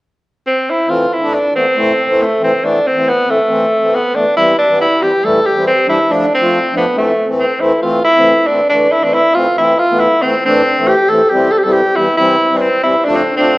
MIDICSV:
0, 0, Header, 1, 3, 480
1, 0, Start_track
1, 0, Key_signature, 0, "minor"
1, 0, Tempo, 434468
1, 33, Time_signature, 2, 2, 24, 8
1, 15003, End_track
2, 0, Start_track
2, 0, Title_t, "Tenor saxophone"
2, 0, Program_c, 0, 66
2, 514, Note_on_c, 0, 60, 83
2, 776, Note_on_c, 0, 64, 83
2, 793, Note_off_c, 0, 60, 0
2, 990, Note_on_c, 0, 65, 78
2, 1007, Note_off_c, 0, 64, 0
2, 1250, Note_on_c, 0, 64, 84
2, 1266, Note_off_c, 0, 65, 0
2, 1487, Note_on_c, 0, 62, 88
2, 1504, Note_off_c, 0, 64, 0
2, 1714, Note_off_c, 0, 62, 0
2, 1720, Note_on_c, 0, 60, 81
2, 2452, Note_on_c, 0, 57, 77
2, 2469, Note_off_c, 0, 60, 0
2, 2680, Note_off_c, 0, 57, 0
2, 2690, Note_on_c, 0, 60, 75
2, 2924, Note_on_c, 0, 62, 78
2, 2941, Note_off_c, 0, 60, 0
2, 3174, Note_on_c, 0, 60, 82
2, 3191, Note_off_c, 0, 62, 0
2, 3407, Note_on_c, 0, 59, 82
2, 3424, Note_off_c, 0, 60, 0
2, 3648, Note_on_c, 0, 57, 87
2, 3665, Note_off_c, 0, 59, 0
2, 4362, Note_on_c, 0, 59, 81
2, 4379, Note_off_c, 0, 57, 0
2, 4583, Note_on_c, 0, 62, 84
2, 4600, Note_off_c, 0, 59, 0
2, 4819, Note_off_c, 0, 62, 0
2, 4826, Note_on_c, 0, 64, 93
2, 5049, Note_off_c, 0, 64, 0
2, 5065, Note_on_c, 0, 62, 98
2, 5289, Note_off_c, 0, 62, 0
2, 5311, Note_on_c, 0, 64, 86
2, 5550, Note_on_c, 0, 67, 77
2, 5566, Note_off_c, 0, 64, 0
2, 5796, Note_on_c, 0, 69, 88
2, 5812, Note_off_c, 0, 67, 0
2, 6032, Note_on_c, 0, 67, 90
2, 6048, Note_off_c, 0, 69, 0
2, 6261, Note_off_c, 0, 67, 0
2, 6268, Note_on_c, 0, 60, 86
2, 6490, Note_off_c, 0, 60, 0
2, 6508, Note_on_c, 0, 64, 88
2, 6765, Note_on_c, 0, 62, 75
2, 6781, Note_off_c, 0, 64, 0
2, 6995, Note_off_c, 0, 62, 0
2, 7010, Note_on_c, 0, 60, 90
2, 7445, Note_off_c, 0, 60, 0
2, 7484, Note_on_c, 0, 59, 77
2, 7699, Note_off_c, 0, 59, 0
2, 7711, Note_on_c, 0, 57, 81
2, 8037, Note_off_c, 0, 57, 0
2, 8170, Note_on_c, 0, 60, 68
2, 8403, Note_on_c, 0, 64, 64
2, 8420, Note_off_c, 0, 60, 0
2, 8639, Note_off_c, 0, 64, 0
2, 8646, Note_on_c, 0, 65, 72
2, 8878, Note_off_c, 0, 65, 0
2, 8885, Note_on_c, 0, 64, 105
2, 9356, Note_on_c, 0, 62, 84
2, 9372, Note_off_c, 0, 64, 0
2, 9599, Note_off_c, 0, 62, 0
2, 9606, Note_on_c, 0, 62, 90
2, 9852, Note_on_c, 0, 64, 89
2, 9868, Note_off_c, 0, 62, 0
2, 9983, Note_on_c, 0, 62, 89
2, 10000, Note_off_c, 0, 64, 0
2, 10092, Note_on_c, 0, 64, 100
2, 10109, Note_off_c, 0, 62, 0
2, 10320, Note_on_c, 0, 65, 88
2, 10337, Note_off_c, 0, 64, 0
2, 10573, Note_off_c, 0, 65, 0
2, 10584, Note_on_c, 0, 64, 86
2, 10811, Note_on_c, 0, 65, 91
2, 10828, Note_off_c, 0, 64, 0
2, 11041, Note_on_c, 0, 64, 90
2, 11057, Note_off_c, 0, 65, 0
2, 11291, Note_on_c, 0, 60, 82
2, 11307, Note_off_c, 0, 64, 0
2, 11538, Note_off_c, 0, 60, 0
2, 11549, Note_on_c, 0, 60, 91
2, 12014, Note_on_c, 0, 67, 102
2, 12031, Note_off_c, 0, 60, 0
2, 12251, Note_on_c, 0, 69, 85
2, 12267, Note_off_c, 0, 67, 0
2, 12478, Note_on_c, 0, 67, 87
2, 12495, Note_off_c, 0, 69, 0
2, 12725, Note_on_c, 0, 69, 108
2, 12741, Note_off_c, 0, 67, 0
2, 12796, Note_on_c, 0, 67, 73
2, 12813, Note_off_c, 0, 69, 0
2, 12860, Note_on_c, 0, 69, 86
2, 12876, Note_off_c, 0, 67, 0
2, 12956, Note_on_c, 0, 67, 96
2, 12973, Note_off_c, 0, 69, 0
2, 13209, Note_on_c, 0, 64, 90
2, 13225, Note_off_c, 0, 67, 0
2, 13440, Note_off_c, 0, 64, 0
2, 13447, Note_on_c, 0, 64, 94
2, 13893, Note_on_c, 0, 62, 62
2, 13909, Note_off_c, 0, 64, 0
2, 13936, Note_on_c, 0, 60, 83
2, 13952, Note_off_c, 0, 62, 0
2, 14169, Note_off_c, 0, 60, 0
2, 14176, Note_on_c, 0, 64, 84
2, 14414, Note_on_c, 0, 62, 96
2, 14431, Note_off_c, 0, 64, 0
2, 14536, Note_on_c, 0, 60, 73
2, 14553, Note_off_c, 0, 62, 0
2, 14761, Note_off_c, 0, 60, 0
2, 14768, Note_on_c, 0, 60, 88
2, 15003, Note_off_c, 0, 60, 0
2, 15003, End_track
3, 0, Start_track
3, 0, Title_t, "Accordion"
3, 0, Program_c, 1, 21
3, 980, Note_on_c, 1, 57, 67
3, 981, Note_on_c, 1, 60, 70
3, 982, Note_on_c, 1, 52, 66
3, 1166, Note_off_c, 1, 57, 0
3, 1166, Note_off_c, 1, 60, 0
3, 1167, Note_off_c, 1, 52, 0
3, 1349, Note_on_c, 1, 52, 62
3, 1355, Note_on_c, 1, 57, 52
3, 1355, Note_on_c, 1, 62, 67
3, 1530, Note_off_c, 1, 52, 0
3, 1533, Note_off_c, 1, 57, 0
3, 1533, Note_off_c, 1, 62, 0
3, 1708, Note_on_c, 1, 52, 64
3, 1709, Note_on_c, 1, 57, 55
3, 1713, Note_on_c, 1, 59, 62
3, 1829, Note_off_c, 1, 52, 0
3, 1830, Note_off_c, 1, 57, 0
3, 1832, Note_off_c, 1, 59, 0
3, 1938, Note_on_c, 1, 52, 72
3, 1942, Note_on_c, 1, 57, 65
3, 1945, Note_on_c, 1, 60, 84
3, 2124, Note_off_c, 1, 52, 0
3, 2126, Note_off_c, 1, 57, 0
3, 2127, Note_off_c, 1, 60, 0
3, 2298, Note_on_c, 1, 57, 60
3, 2298, Note_on_c, 1, 60, 76
3, 2300, Note_on_c, 1, 52, 58
3, 2483, Note_off_c, 1, 60, 0
3, 2484, Note_off_c, 1, 52, 0
3, 2484, Note_off_c, 1, 57, 0
3, 2662, Note_on_c, 1, 57, 58
3, 2664, Note_on_c, 1, 52, 68
3, 2664, Note_on_c, 1, 60, 75
3, 2786, Note_off_c, 1, 52, 0
3, 2786, Note_off_c, 1, 57, 0
3, 2786, Note_off_c, 1, 60, 0
3, 2902, Note_on_c, 1, 59, 75
3, 2904, Note_on_c, 1, 52, 71
3, 2904, Note_on_c, 1, 57, 70
3, 3085, Note_off_c, 1, 59, 0
3, 3086, Note_off_c, 1, 52, 0
3, 3086, Note_off_c, 1, 57, 0
3, 3264, Note_on_c, 1, 52, 62
3, 3269, Note_on_c, 1, 60, 65
3, 3270, Note_on_c, 1, 57, 59
3, 3446, Note_off_c, 1, 52, 0
3, 3449, Note_off_c, 1, 57, 0
3, 3449, Note_off_c, 1, 60, 0
3, 3620, Note_on_c, 1, 52, 54
3, 3624, Note_on_c, 1, 57, 64
3, 3627, Note_on_c, 1, 60, 68
3, 3744, Note_off_c, 1, 52, 0
3, 3746, Note_off_c, 1, 57, 0
3, 3747, Note_off_c, 1, 60, 0
3, 3854, Note_on_c, 1, 52, 71
3, 3859, Note_on_c, 1, 57, 68
3, 3859, Note_on_c, 1, 60, 74
3, 4041, Note_off_c, 1, 52, 0
3, 4043, Note_off_c, 1, 57, 0
3, 4043, Note_off_c, 1, 60, 0
3, 4222, Note_on_c, 1, 52, 65
3, 4222, Note_on_c, 1, 60, 62
3, 4225, Note_on_c, 1, 57, 56
3, 4404, Note_off_c, 1, 60, 0
3, 4405, Note_off_c, 1, 52, 0
3, 4406, Note_off_c, 1, 57, 0
3, 4582, Note_on_c, 1, 52, 61
3, 4582, Note_on_c, 1, 57, 54
3, 4588, Note_on_c, 1, 59, 68
3, 4704, Note_off_c, 1, 52, 0
3, 4704, Note_off_c, 1, 57, 0
3, 4707, Note_off_c, 1, 59, 0
3, 4829, Note_on_c, 1, 55, 64
3, 4830, Note_on_c, 1, 52, 62
3, 4831, Note_on_c, 1, 60, 77
3, 5007, Note_off_c, 1, 55, 0
3, 5008, Note_off_c, 1, 52, 0
3, 5008, Note_off_c, 1, 60, 0
3, 5178, Note_on_c, 1, 52, 60
3, 5183, Note_on_c, 1, 59, 66
3, 5184, Note_on_c, 1, 55, 56
3, 5362, Note_off_c, 1, 52, 0
3, 5365, Note_off_c, 1, 55, 0
3, 5365, Note_off_c, 1, 59, 0
3, 5538, Note_on_c, 1, 60, 65
3, 5542, Note_on_c, 1, 52, 58
3, 5542, Note_on_c, 1, 55, 49
3, 5662, Note_off_c, 1, 60, 0
3, 5664, Note_off_c, 1, 52, 0
3, 5664, Note_off_c, 1, 55, 0
3, 5779, Note_on_c, 1, 52, 71
3, 5779, Note_on_c, 1, 57, 73
3, 5780, Note_on_c, 1, 55, 60
3, 5962, Note_off_c, 1, 52, 0
3, 5962, Note_off_c, 1, 57, 0
3, 5963, Note_off_c, 1, 55, 0
3, 6140, Note_on_c, 1, 52, 64
3, 6140, Note_on_c, 1, 55, 57
3, 6142, Note_on_c, 1, 60, 65
3, 6323, Note_off_c, 1, 52, 0
3, 6323, Note_off_c, 1, 55, 0
3, 6324, Note_off_c, 1, 60, 0
3, 6483, Note_on_c, 1, 52, 70
3, 6485, Note_on_c, 1, 62, 73
3, 6489, Note_on_c, 1, 55, 53
3, 6614, Note_off_c, 1, 52, 0
3, 6615, Note_off_c, 1, 62, 0
3, 6617, Note_off_c, 1, 55, 0
3, 6722, Note_on_c, 1, 53, 67
3, 6722, Note_on_c, 1, 57, 63
3, 6728, Note_on_c, 1, 62, 88
3, 6914, Note_off_c, 1, 53, 0
3, 6914, Note_off_c, 1, 57, 0
3, 6917, Note_off_c, 1, 62, 0
3, 7084, Note_on_c, 1, 53, 65
3, 7084, Note_on_c, 1, 57, 61
3, 7090, Note_on_c, 1, 65, 70
3, 7275, Note_off_c, 1, 53, 0
3, 7275, Note_off_c, 1, 57, 0
3, 7278, Note_off_c, 1, 65, 0
3, 7439, Note_on_c, 1, 53, 64
3, 7439, Note_on_c, 1, 57, 60
3, 7444, Note_on_c, 1, 62, 71
3, 7572, Note_off_c, 1, 53, 0
3, 7572, Note_off_c, 1, 57, 0
3, 7574, Note_off_c, 1, 62, 0
3, 7680, Note_on_c, 1, 57, 56
3, 7682, Note_on_c, 1, 52, 62
3, 7682, Note_on_c, 1, 60, 68
3, 7873, Note_off_c, 1, 57, 0
3, 7874, Note_off_c, 1, 52, 0
3, 7874, Note_off_c, 1, 60, 0
3, 8035, Note_on_c, 1, 52, 57
3, 8041, Note_on_c, 1, 57, 60
3, 8042, Note_on_c, 1, 60, 72
3, 8230, Note_off_c, 1, 52, 0
3, 8233, Note_off_c, 1, 57, 0
3, 8234, Note_off_c, 1, 60, 0
3, 8400, Note_on_c, 1, 52, 75
3, 8401, Note_on_c, 1, 57, 64
3, 8406, Note_on_c, 1, 60, 84
3, 8533, Note_off_c, 1, 52, 0
3, 8533, Note_off_c, 1, 57, 0
3, 8536, Note_off_c, 1, 60, 0
3, 8647, Note_on_c, 1, 52, 74
3, 8648, Note_on_c, 1, 57, 65
3, 8652, Note_on_c, 1, 60, 75
3, 8836, Note_off_c, 1, 52, 0
3, 8836, Note_off_c, 1, 57, 0
3, 8839, Note_off_c, 1, 60, 0
3, 9025, Note_on_c, 1, 52, 69
3, 9027, Note_on_c, 1, 57, 60
3, 9027, Note_on_c, 1, 60, 77
3, 9205, Note_off_c, 1, 52, 0
3, 9206, Note_off_c, 1, 57, 0
3, 9206, Note_off_c, 1, 60, 0
3, 9381, Note_on_c, 1, 52, 60
3, 9383, Note_on_c, 1, 60, 73
3, 9387, Note_on_c, 1, 57, 63
3, 9503, Note_off_c, 1, 52, 0
3, 9504, Note_off_c, 1, 60, 0
3, 9506, Note_off_c, 1, 57, 0
3, 9621, Note_on_c, 1, 52, 75
3, 9621, Note_on_c, 1, 57, 69
3, 9627, Note_on_c, 1, 62, 75
3, 9803, Note_off_c, 1, 52, 0
3, 9803, Note_off_c, 1, 57, 0
3, 9806, Note_off_c, 1, 62, 0
3, 9969, Note_on_c, 1, 57, 60
3, 9971, Note_on_c, 1, 60, 68
3, 9972, Note_on_c, 1, 52, 64
3, 10157, Note_off_c, 1, 57, 0
3, 10158, Note_off_c, 1, 60, 0
3, 10159, Note_off_c, 1, 52, 0
3, 10330, Note_on_c, 1, 60, 76
3, 10332, Note_on_c, 1, 52, 57
3, 10334, Note_on_c, 1, 57, 53
3, 10458, Note_off_c, 1, 52, 0
3, 10458, Note_off_c, 1, 60, 0
3, 10460, Note_off_c, 1, 57, 0
3, 10583, Note_on_c, 1, 52, 69
3, 10583, Note_on_c, 1, 57, 63
3, 10587, Note_on_c, 1, 60, 74
3, 10764, Note_off_c, 1, 52, 0
3, 10764, Note_off_c, 1, 57, 0
3, 10766, Note_off_c, 1, 60, 0
3, 10939, Note_on_c, 1, 57, 54
3, 10941, Note_on_c, 1, 52, 66
3, 10945, Note_on_c, 1, 59, 78
3, 11122, Note_off_c, 1, 57, 0
3, 11123, Note_off_c, 1, 52, 0
3, 11126, Note_off_c, 1, 59, 0
3, 11305, Note_on_c, 1, 60, 71
3, 11307, Note_on_c, 1, 52, 74
3, 11308, Note_on_c, 1, 57, 66
3, 11425, Note_off_c, 1, 60, 0
3, 11426, Note_off_c, 1, 52, 0
3, 11427, Note_off_c, 1, 57, 0
3, 11547, Note_on_c, 1, 57, 64
3, 11552, Note_on_c, 1, 52, 75
3, 11554, Note_on_c, 1, 62, 81
3, 11726, Note_off_c, 1, 57, 0
3, 11729, Note_off_c, 1, 52, 0
3, 11730, Note_off_c, 1, 62, 0
3, 11914, Note_on_c, 1, 52, 71
3, 11917, Note_on_c, 1, 57, 66
3, 11921, Note_on_c, 1, 60, 67
3, 12090, Note_off_c, 1, 52, 0
3, 12092, Note_off_c, 1, 57, 0
3, 12094, Note_off_c, 1, 60, 0
3, 12266, Note_on_c, 1, 52, 58
3, 12269, Note_on_c, 1, 57, 62
3, 12271, Note_on_c, 1, 60, 72
3, 12387, Note_off_c, 1, 52, 0
3, 12388, Note_off_c, 1, 57, 0
3, 12389, Note_off_c, 1, 60, 0
3, 12507, Note_on_c, 1, 52, 72
3, 12507, Note_on_c, 1, 55, 65
3, 12515, Note_on_c, 1, 60, 78
3, 12687, Note_off_c, 1, 52, 0
3, 12687, Note_off_c, 1, 55, 0
3, 12691, Note_off_c, 1, 60, 0
3, 12863, Note_on_c, 1, 52, 61
3, 12866, Note_on_c, 1, 55, 56
3, 12867, Note_on_c, 1, 60, 73
3, 13045, Note_off_c, 1, 52, 0
3, 13047, Note_off_c, 1, 55, 0
3, 13048, Note_off_c, 1, 60, 0
3, 13230, Note_on_c, 1, 52, 71
3, 13232, Note_on_c, 1, 55, 58
3, 13234, Note_on_c, 1, 59, 69
3, 13349, Note_off_c, 1, 52, 0
3, 13350, Note_off_c, 1, 55, 0
3, 13351, Note_off_c, 1, 59, 0
3, 13467, Note_on_c, 1, 55, 58
3, 13470, Note_on_c, 1, 60, 81
3, 13471, Note_on_c, 1, 52, 74
3, 13648, Note_off_c, 1, 55, 0
3, 13650, Note_off_c, 1, 52, 0
3, 13650, Note_off_c, 1, 60, 0
3, 13827, Note_on_c, 1, 52, 71
3, 13830, Note_on_c, 1, 55, 61
3, 13832, Note_on_c, 1, 60, 74
3, 14008, Note_off_c, 1, 52, 0
3, 14010, Note_off_c, 1, 55, 0
3, 14011, Note_off_c, 1, 60, 0
3, 14180, Note_on_c, 1, 52, 63
3, 14181, Note_on_c, 1, 55, 64
3, 14183, Note_on_c, 1, 60, 73
3, 14305, Note_off_c, 1, 52, 0
3, 14306, Note_off_c, 1, 55, 0
3, 14307, Note_off_c, 1, 60, 0
3, 14427, Note_on_c, 1, 62, 83
3, 14430, Note_on_c, 1, 53, 69
3, 14433, Note_on_c, 1, 57, 65
3, 14609, Note_off_c, 1, 62, 0
3, 14610, Note_off_c, 1, 53, 0
3, 14612, Note_off_c, 1, 57, 0
3, 14787, Note_on_c, 1, 53, 60
3, 14787, Note_on_c, 1, 57, 57
3, 14787, Note_on_c, 1, 62, 67
3, 14969, Note_off_c, 1, 53, 0
3, 14969, Note_off_c, 1, 57, 0
3, 14969, Note_off_c, 1, 62, 0
3, 15003, End_track
0, 0, End_of_file